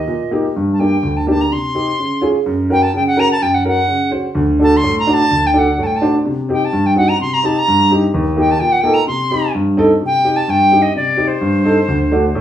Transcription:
0.00 0.32 D#5 medium
0.08 0.43 A#2 medium
0.31 0.44 A#3 medium
0.31 0.44 D#4 medium
0.31 0.44 G4 medium
0.56 0.92 G2 medium
0.73 0.81 A5 soft
0.79 0.92 A#3 medium
0.79 0.92 D4 soft
0.79 0.92 G4 medium
0.79 1.18 G5 medium
1.03 1.39 D2 medium
1.17 1.28 A5 medium
1.27 1.39 A#3 medium
1.27 1.40 D4 medium
1.27 1.40 G4 medium
1.27 1.43 A5 medium
1.41 1.54 A#5 medium
1.51 1.87 C3 medium
1.51 2.24 C6 medium
1.75 1.87 C4 medium
1.75 1.87 D#4 medium
1.75 1.87 G4 medium
1.99 2.35 C#3 medium
2.21 2.34 C#4 medium
2.21 2.34 F4 medium
2.21 2.35 G#4 medium
2.46 2.82 F#2 medium
2.69 2.82 C#4 medium
2.69 2.82 F#4 medium
2.69 2.82 A#4 medium
2.69 2.84 G5 medium
2.83 2.95 A5 medium
2.94 3.30 C#3 medium
2.94 3.06 G5 medium
3.07 3.21 F#5 medium
3.16 3.29 C#4 medium
3.16 3.29 F#4 medium
3.16 3.30 A#4 medium
3.16 3.31 A#5 loud
3.32 3.44 A5 loud
3.41 3.77 F#2 medium
3.41 3.56 G5 medium
3.54 3.66 F#5 medium
3.65 3.77 C#4 medium
3.65 3.77 F#4 medium
3.65 3.78 A#4 medium
3.65 4.11 F#5 medium
3.88 4.24 C#3 medium
4.11 4.24 C#4 medium
4.11 4.24 F#4 medium
4.11 4.24 C5 medium
4.35 4.71 D2 medium
4.59 4.72 D4 medium
4.59 4.72 F#4 medium
4.59 4.72 A4 medium
4.59 4.78 A5 loud
4.77 4.98 C6 loud
4.83 5.19 A2 medium
4.99 5.15 A#5 loud
5.07 5.19 D4 medium
5.07 5.20 F#4 medium
5.07 5.20 C5 medium
5.13 5.48 A5 loud
5.31 5.66 D2 medium
5.47 5.60 G5 medium
5.54 5.66 D4 medium
5.54 5.66 F#4 medium
5.54 5.66 A4 medium
5.59 5.85 F#5 medium
5.78 6.13 A2 medium
5.83 5.98 G5 medium
5.83 5.88 A5 medium
5.96 6.16 A5 medium
6.02 6.14 D4 medium
6.02 6.14 F#4 medium
6.02 6.14 C5 medium
6.25 6.61 C3 medium
6.49 6.61 C4 medium
6.49 6.61 D#4 medium
6.49 6.61 G4 medium
6.49 6.66 G5 medium
6.65 6.88 A5 medium
6.73 7.08 G2 medium
6.86 6.97 G5 medium
6.96 7.08 C4 medium
6.96 7.08 D#4 medium
6.96 7.08 F#4 medium
6.96 7.10 F#5 medium
7.09 7.20 A#5 medium
7.20 7.55 C3 medium
7.20 7.35 C6 medium
7.34 7.47 A#5 medium
7.43 7.55 C4 medium
7.43 7.55 D#4 medium
7.43 7.56 G4 medium
7.43 7.60 A5 medium
7.58 7.92 A#5 loud
7.68 8.02 G2 medium
7.91 8.02 C4 medium
7.91 8.02 D#4 medium
7.91 8.03 G4 medium
8.14 8.49 D#2 medium
8.37 8.49 A#3 medium
8.37 8.49 D#4 medium
8.37 8.49 G4 medium
8.37 8.53 G5 medium
8.51 8.61 A5 medium
8.60 8.95 A#2 medium
8.60 8.74 G5 medium
8.72 8.82 F#5 medium
8.81 8.95 A#3 medium
8.81 8.96 D#4 medium
8.81 8.96 A4 medium
8.81 8.95 G5 medium
8.94 9.07 A#5 medium
9.07 9.42 C3 medium
9.07 9.51 C6 medium
9.31 9.42 C4 medium
9.31 9.43 D#4 medium
9.31 9.43 G4 medium
9.55 9.89 G2 medium
9.77 9.89 C4 medium
9.77 9.90 D#4 medium
9.77 9.90 A4 loud
10.01 10.36 C3 medium
10.06 10.38 G5 medium
10.24 10.36 C4 medium
10.24 10.36 D#4 medium
10.24 10.36 G4 medium
10.36 10.51 A5 medium
10.48 10.83 G2 medium
10.48 10.84 G5 medium
10.71 10.83 C4 medium
10.71 10.83 D#4 medium
10.71 10.84 G4 medium
10.82 10.96 D#5 medium
10.96 11.30 C3 medium
10.96 11.29 D5 medium
11.17 11.29 C4 medium
11.17 11.29 D#4 medium
11.17 11.29 G4 medium
11.28 12.41 C5 medium
11.41 11.76 G2 medium
11.64 11.76 C4 medium
11.64 11.76 D#4 medium
11.64 11.77 A4 medium
11.88 12.23 D2 medium
12.12 12.23 A3 medium
12.12 12.23 D4 medium
12.12 12.23 F#4 medium
12.35 12.41 A2 medium

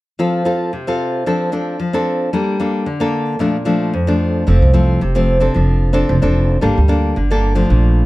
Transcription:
0.19 0.70 F3 medium
0.19 0.42 C4 soft
0.19 0.42 F4 soft
0.19 0.42 A4 soft
0.45 0.71 C4 soft
0.45 0.71 F4 soft
0.45 0.71 A4 medium
0.73 1.24 C3 medium
0.87 1.23 C4 medium
0.87 1.23 F4 medium
0.87 1.23 A4 medium
1.26 1.77 F3 medium
1.26 1.49 C4 soft
1.26 1.49 D4 soft
1.26 1.49 A4 medium
1.52 1.78 C4 soft
1.52 1.78 D4 medium
1.52 1.78 A4 medium
1.80 2.31 F3 medium
1.93 2.29 C4 soft
1.93 2.30 D4 soft
1.93 2.30 A4 medium
2.33 2.84 G3 medium
2.33 2.56 A#3 soft
2.33 2.56 D4 medium
2.33 2.56 A4 soft
2.60 2.85 A#3 medium
2.60 2.86 D4 soft
2.60 2.86 A4 soft
2.86 3.38 D3 medium
3.00 3.36 A#3 medium
3.00 3.37 D4 soft
3.00 3.37 A4 medium
3.39 3.91 A#2 medium
3.39 3.56 F3 soft
3.39 3.56 A3 medium
3.39 3.57 D4 medium
3.65 3.92 F3 soft
3.65 3.92 A3 medium
3.65 3.92 D4 medium
3.94 4.45 F2 medium
4.07 4.44 F3 soft
4.07 4.44 A3 soft
4.07 4.44 D4 medium
4.47 4.59 F1 medium
4.47 4.98 F2 soft
4.47 4.70 F3 soft
4.47 4.70 A3 soft
4.47 4.71 C4 medium
4.62 4.96 C2 medium
4.73 4.99 F3 soft
4.73 5.00 A3 soft
4.73 5.00 C4 medium
5.01 5.48 F1 medium
5.01 5.53 C3 medium
5.15 5.38 F3 medium
5.15 5.38 A3 soft
5.15 5.38 C4 medium
5.40 5.91 C4 medium
5.40 5.91 D4 medium
5.40 5.91 A4 medium
5.54 6.01 F1 medium
5.54 6.06 F3 medium
5.93 6.17 C4 medium
5.93 6.17 D4 medium
5.93 6.17 A4 medium
6.09 6.21 F1 medium
6.09 6.60 F3 medium
6.22 6.57 F1 medium
6.22 6.58 C4 soft
6.22 6.58 D4 medium
6.22 6.59 A4 medium
6.61 6.74 G1 medium
6.61 7.13 G3 soft
6.61 6.78 A#3 soft
6.61 6.78 D4 soft
6.61 6.78 A4 medium
6.78 7.11 D2 medium
6.88 7.14 A#3 soft
6.88 7.14 D4 medium
6.88 7.15 A4 medium
7.16 7.62 G1 medium
7.16 7.67 D3 medium
7.31 7.53 A#3 medium
7.31 7.53 D4 medium
7.31 7.53 A4 medium
7.55 8.05 F3 medium
7.55 8.05 A3 medium
7.55 8.06 D4 medium
7.70 8.06 A#1 medium
7.70 8.06 A#2 medium

